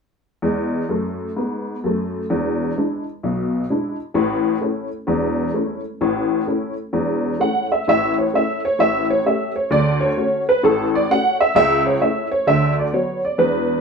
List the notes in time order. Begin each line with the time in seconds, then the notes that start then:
0.42 E2 G#3
0.89 F#2 A3
1.36 G#2 B3
1.84 F#2 A3
2.30 E1 E2
2.78 G#3 D4 E4
3.23 B1 B2
3.70 G#3 D4 E4
4.14 A1 A2
4.61 A3 C#4 E4
5.07 E1 E2
5.54 A3 C#4 E4
6.01 A1 A2
6.47 A3 C#4 E4
6.93 E1 E2
7.40 A3 C#4 E4 F#5
7.72 E5
7.88 A1 A2 E5
8.18 C#5
8.34 A3 C#4 E4 E5
8.65 C#5
8.79 A1 A2 E5
9.10 C#5
9.26 A3 C#4 G4 E5
9.56 C#5
9.71 D2 D3 D5
10.01 C#5
10.17 A3 C#4 F#4
10.49 B4
10.63 A1 A2 A4
10.95 D5
11.10 A3 C#4 F#4 F#5
11.41 E5
11.55 C#2 C#3 E5
11.86 C#5
12.01 A3 C#4 E4 E5
12.31 C#5
12.47 D2 D3 E5
12.79 D5
12.93 F#3 B3 F#4 C#5
13.25 D5
13.38 E1 E2 B4